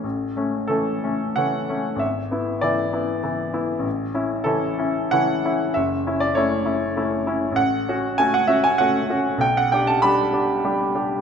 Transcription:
\new Staff \with { instrumentName = "Grand piano" } { \time 3/4 \key a \major \tempo 4 = 97 << { r4 a'4 fis''4 | e''4 d''4. r8 | r4 a'4 fis''4 | e''8. d''16 cis''4. r8 |
\key fis \minor fis''4 gis''16 fis''16 e''16 gis''16 fis''4 | g''16 fis''16 g''16 a''16 b''4. r8 | } \\ { a,,8 <a cis'>8 <e a cis'>8 <a cis'>8 <e a cis'>8 <a cis'>8 | gis,,8 <b e'>8 <e b e'>8 <b e'>8 <e b e'>8 <b e'>8 | a,,8 <cis' e'>8 <e cis' e'>8 <cis' e'>8 <e cis' e'>8 <cis' e'>8 | fis,,8 <cis' e'>8 <a cis' e'>8 <cis' e'>8 <a cis' e'>8 <cis' e'>8 |
a,,8 <cis' fis'>8 <a cis' fis'>8 <cis' fis'>8 <a cis' fis'>8 <cis' fis'>8 | b,,8 <d' g'>8 <g d' g'>8 <d' g'>8 <g d' g'>8 <d' g'>8 | } >> }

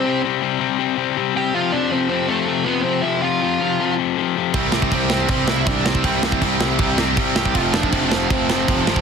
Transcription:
<<
  \new Staff \with { instrumentName = "Lead electric guitar" } { \time 4/4 \key c \major \tempo 4 = 160 <c' c''>8 r2. <g' g''>8 | <f' f''>8 <d' d''>8 <c' c''>8 <c' c''>8 <a a'>4 <b b'>8 <c' c''>8 | <e' e''>8 <f' f''>2 r4. | r4 <c' c''>4 <c' c''>8 <e' e''>8 <d' d''>8 <c' c''>8~ |
<c' c''>8 r2. <g' g''>8 | <f' f''>8 <d' d''>4 <c' c''>8 <c' c''>4. <c' c''>8 | }
  \new Staff \with { instrumentName = "Distorted electric guitar" } { \clef bass \time 4/4 \key c \major r1 | r1 | r1 | <c e g c' e'>4. <c e g c' e'>4. <c e g c' e'>4 |
<c e g c' e'>4. <c e g c' e'>4. <c e g c' e'>4 | <f a c' f'>4. <f a c' f'>4. <f a c' f'>4 | }
  \new Staff \with { instrumentName = "Distorted electric guitar" } { \clef bass \time 4/4 \key c \major <c g c'>8 <c g c'>8 <c g c'>8 <c g c'>8 <c g c'>8 <c g c'>8 <c g c'>8 <c g c'>8 | <f, c f>8 <f, c f>8 <f, c f>8 <f, c f>8 <f, c f>8 <f, c f>8 <f, c f>8 <f, c f>8 | <f, c f>8 <f, c f>8 <f, c f>8 <f, c f>8 <f, c f>8 <f, c f>8 <f, c f>8 <f, c f>8 | <g c'>8 <c g c'>8 <c g c'>8 <c g c'>8 <c g c'>8 <c g c'>8 <c g c'>8 <c g c'>8 |
<c g c'>8 <c g c'>8 <c g c'>8 <c g c'>8 <c g c'>8 <c g c'>8 <c g c'>8 <c g c'>8 | <f, c f>8 <f, c f>8 <f, c f>8 <f, c f>8 <f, c f>8 <f, c f>8 <f, c f>8 <f, c f>8 | }
  \new Staff \with { instrumentName = "Overdriven electric guitar" } { \clef bass \time 4/4 \key c \major r1 | r1 | r1 | <c g c'>8 <c g c'>8 <c g c'>8 <c g c'>8 <c g c'>8 <c g c'>8 <c g c'>8 <c g c'>8 |
<c g c'>8 <c g c'>8 <c g c'>8 <c g c'>8 <c g c'>8 <c g c'>8 <c g c'>8 <c g c'>8 | <f, c f>8 <f, c f>8 <f, c f>8 <f, c f>8 <f, c f>8 <f, c f>8 <f, c f>8 <f, c f>8 | }
  \new Staff \with { instrumentName = "Picked electric bass" } { \clef bass \time 4/4 \key c \major r1 | r1 | r1 | c,8 c,8 c,4 c,4 c,8 c,8 |
c,8 c,8 c,8 c,8 c,8 c,8 c8 c,8 | f,,8 f,,8 f,,4 f,,4 f,,8 gis,,8 | }
  \new DrumStaff \with { instrumentName = "Drums" } \drummode { \time 4/4 r4 r4 r4 r4 | r4 r4 r4 r4 | r4 r4 r4 r4 | <cymc bd>8 sn16 bd16 <cymc bd>8 sn8 <cymc bd>8 sn8 <cymc bd>8 sn16 bd16 |
<cymc bd>8 sn16 bd16 <cymc bd>8 sn8 <cymc bd>8 sn8 <cymc bd>8 sn16 bd16 | <cymc bd>8 sn16 bd16 <cymc bd>8 sn8 <cymc bd>8 sn8 <cymc bd>8 sn16 bd16 | }
>>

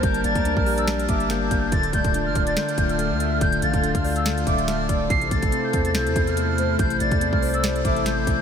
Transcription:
<<
  \new Staff \with { instrumentName = "Flute" } { \time 4/4 \key d \minor \tempo 4 = 142 g'''8 a'''8. f'''8 e'''16 r8 d'''8 g'''4 | a'''8 g'''8. f'''8 a'''16 g'''8. f'''4~ f'''16 | g'''8 a'''8. f'''8 e'''16 r8 d'''8 f'''8 r8 | c''''8 a'''8. g'''8 a'''16 g'''8. f'''4~ f'''16 |
g'''8 a'''8. f'''8 e'''16 r8 d'''8 g'''4 | }
  \new Staff \with { instrumentName = "Soft synth lead" } { \time 4/4 \key d \minor r8 d''2 e''8 r4 | r8 d''2. e''8 | r8 f''2 e''4 d''8 | r8 a'2. c''8 |
r8 d''2 e''8 r4 | }
  \new Staff \with { instrumentName = "String section" } { \time 4/4 \key d \minor << { <g bes' a''>1 | <d f' a'>1~ | <d f' a'>1 | <a e' c''>1~ |
<a e' c''>1 | } \\ { d'1~ | d'1~ | d'1 | r1 |
r1 | } >> }
  \new Staff \with { instrumentName = "Tine electric piano" } { \time 4/4 \key d \minor <g bes>8 bes8 d'8 g'8 g8 bes8 bes8 bes8 | d8 a8 d'8 d''8 d8 a8 a8 a8 | d8 a8 d'8 d''8 d8 a8 a8 a8 | c8 a8 c'8 c''8 c8 a8 a8 a8 |
c8 a8 c'8 c''8 c8 a8 a8 a8 | }
  \new Staff \with { instrumentName = "808-style bass" } { \clef bass \time 4/4 \key d \minor g,,8 g,,16 d,8 bes,,4~ bes,,16 g,,4 g,,8 | d,,8 d,,8. f,,16 d,,8 r8 d,,8. d,8. | d,,8 a,,16 d,,8 d,4~ d,16 d,,4 d,,8 | a,,8 a,,8 r8 e,8 c,16 e,16 e,4. |
a,,8 a,,16 e,8 c,4~ c,16 a,,4 a,,8 | }
  \new DrumStaff \with { instrumentName = "Drums" } \drummode { \time 4/4 <hh bd>16 hh16 hh16 <hh bd>16 hh16 bd16 hho16 hh16 <hh sn>16 hh16 <hh bd>16 hh16 <hh sn>8 <hh bd>8 | <hh bd>16 hh16 <hh bd>16 <hh bd>16 hh8 <hh bd>16 hh16 <hh sn>16 hh16 <hh bd>16 hh16 hh8 hh8 | <hh bd>16 hh16 hh16 <hh bd>16 hh16 <hh bd>16 hho16 hh16 <hh sn>16 hh16 <hh bd>16 hh16 <hh sn>8 <hh bd>8 | <hh bd>16 hh16 <hh bd>16 <hh bd>16 hh8 <hh bd>16 hh16 <hh sn>16 hh16 <hh bd>16 hh16 hh8 hh8 |
<hh bd>16 hh16 hh16 <hh bd>16 hh16 bd16 hho16 hh16 <hh sn>16 hh16 <hh bd>16 hh16 <hh sn>8 <hh bd>8 | }
>>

